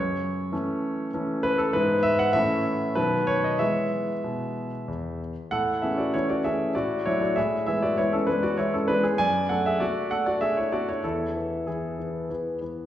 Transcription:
Already playing: F#2 C#5
0.52 E3 A3 C#4
1.14 E3 A3 C#4
1.43 B4
1.58 A4
1.73 G#2 E3 B3 E4 B4
2.03 E5
2.19 F#5
2.33 A2 E3 A3 C#4 E5
2.95 B2 D#3 F#3 B3 B4
3.27 C#5
3.44 D#5
3.59 E3 G#3 B3 E5
4.24 B2
4.88 E2
5.51 A2 A4 F#5
5.82 E3 A3 C#4 G#4 E5
5.98 F#4 D5
6.14 E3 A3 C#4 E4 C#5
6.29 F#4 D5
6.44 E3 A3 C#4 G#4 E5
6.75 A2 F#4 D5
7.06 F#3 A3 D4 E4 C#5
7.21 F#4 D5
7.36 A2 G#4 E5
7.66 E3 G#3 B3 G#4 E5
7.82 F#4 D5
7.98 E3 G#3 B3 E4 C#5
8.13 C#4 A4
8.27 E3 G#3 B3 D4 B4
8.43 F#4 D5
8.58 E3 G#3 B3 E4 C#5
8.74 C#4 A4
8.88 E3 G#3 B3 D4 B4
9.03 B3 G#4
9.18 F#2 D5 G#5
9.49 A3 D4 A4 F#5
9.66 G#4 E5
9.80 A3 D4 F#4 D5
10.11 A3 D4 A4 F#5
10.26 F#4 D5
10.41 A3 D4 G#4 E5
10.57 E4 C#5
10.72 A3 D4 F#4 D5
10.89 E4 C#5
11.04 E2 E4 A4
11.35 E3 B3
11.67 E3 B3 G#4
11.99 E3 B3
12.30 E3 B3
12.61 E3 B3

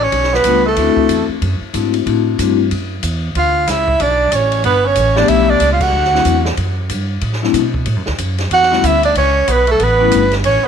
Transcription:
Already playing: A1
0.02 C#4 C#5
0.12 B1, kick, ride
0.23 snare
0.33 B3 B4, snare
0.44 C#2 G3 A3 B3 D4 F4, kick, hi-hat pedal, ride
0.66 A3 A4
0.76 D2 A3 C4 D4 E4 F#4, kick, ride
0.96 muted upright bass stroke, kick
1.09 E2, hi-hat pedal, ride
1.29 muted upright bass stroke
1.42 F#2, kick, ride
1.61 muted upright bass stroke
1.74 G#2 A3 C4 D4 E4 F#4, kick, hi-hat pedal, ride
1.94 ride
2.06 A2 A3 C4 D4 E4 F#4, kick, ride
2.39 G2 A3 C4 D4 E4 F#4, kick, hi-hat pedal, ride
2.71 F#2, kick, ride
3.03 E2, kick, hi-hat pedal, ride
3.35 D2 F4 F5, kick, ride
3.67 C#2 E4 E5, kick, snare, hi-hat pedal, ride
3.88 kick
4.00 B1 D4 D5, kick, ride
4.32 A1 C#4 C#5, kick, hi-hat pedal, ride
4.52 ride
4.64 G1 B3 B4, kick, ride
4.85 C#4 C#5
4.95 A1, kick, hi-hat pedal, ride
5.16 F3 A3 B3 D4 G4 D5, snare
5.28 B1 E4 E5, kick, ride
5.49 D4 D5
5.60 C#2, kick, hi-hat pedal, ride
5.72 F4 F5
5.81 F#4 F#5, kick, crash
5.93 D2
6.05 snare
6.13 F#3 A3 C4 D4 E4, snare
6.25 E2, kick, hi-hat pedal, ride
6.45 snare
6.57 F#2, kick, ride
6.89 G2, kick, hi-hat pedal, ride
7.21 A2, kick, ride
7.33 snare
7.42 F#3 A3 C4 D4 E4, snare
7.54 B2, kick, hi-hat pedal, ride
7.74 kick
7.86 A2, kick, ride
7.96 F#2
8.06 D2, snare
8.18 F#2, kick, hi-hat pedal, ride
8.38 snare, ride
8.50 E2 F#4 F#5, kick, ride
8.62 snare
8.70 G3 A3 B3 C#4 E4, snare
8.83 D2 E4 E5, kick, hi-hat pedal, ride
9.03 D4 D5, ride
9.15 C#2 C#4 C#5, kick, ride
9.48 B1 B3 B4, kick, hi-hat pedal, ride
9.67 A3, ride
9.71 A4
9.80 A1 B3 B4, kick, ride
9.99 G3 A3 B3 C#4 E4
10.12 G1, kick, hi-hat pedal, ride
10.32 snare, ride
10.44 A1 C#4 C#5, kick, ride
10.64 B3, muted upright bass stroke

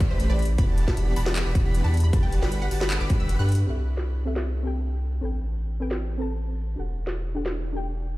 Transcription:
Already playing: A4 B4
0.00 G4, kick, closed hi-hat
0.10 A1 A3 E4 G4 B4 C5 B5 B6
0.20 B4, closed hi-hat
0.30 A1 A3 G4 B4 C5 D5 B5 B6
0.39 G4, closed hi-hat
0.42 closed hi-hat
0.45 E4, closed hi-hat
0.58 E1 E3 B3 G4 D5 F#5 A5 B5 A6, kick, closed hi-hat
0.69 F#4
0.78 E4, closed hi-hat
0.88 E1 E3 B3 D4 G4 D5 F#5 A5 B5 B6, kick, snare
0.97 G4, closed hi-hat
1.07 F#4
1.16 E1 E3 B3 E4 G4 D5 F#5 A5 B5 A6, open hi-hat
1.26 D4, snare
1.36 G4, clap, closed hi-hat
1.46 E1 E3 B3 F#4 G4 D5 F#5 B5 B6
1.55 E4, kick, closed hi-hat
1.65 E1 E3 B3 D4 G4 D5 F#5 B5 B6
1.75 G4, closed hi-hat
1.84 E2 E3 B3 E4 G4 D5 F#5 A5 B5 B6
1.94 E4, closed hi-hat
1.97 closed hi-hat
2.00 D4 B5, closed hi-hat
2.13 G1 G3 G4 A4 B4 F#5 A5 A6, kick, closed hi-hat
2.23 G4 G5
2.32 F#4, closed hi-hat
2.42 G1 G3 D4 G4 B4 F#5 B5 B6, snare
2.52 A4, closed hi-hat
2.62 G4 F#5
2.71 G1 G3 F#4 G4 B4 F#5 A5 A6, open hi-hat
2.81 D4 B5, snare
2.90 A4, clap, closed hi-hat
3.00 G1 G3 G4 B4 F#5 B5 D6 B6
3.10 B4, kick, closed hi-hat
3.20 G1 G3 D4 G4 B4 F#5 B5 E6 B6
3.29 F#4, closed hi-hat
3.39 G2 G3 G4 A4 B4 F#5 B5 F#6 B6
3.49 B4, closed hi-hat
3.52 closed hi-hat
3.55 F#4, closed hi-hat
3.66 C2 C4 G4 A4 E5
3.97 snare
4.25 C4 G4 A4 E5
4.36 snare
4.63 C4 G4 A4
4.67 G5
5.21 A1 C4 A4 B4 G5
5.80 C4 A4 B4 G5
5.91 snare
6.17 C4 A4 B4 A5
6.76 E1 D4 G4 A4 F#5
7.07 snare
7.35 D4 G4 A4 F#5
7.46 snare
7.72 D4 G4 A4
7.76 G5

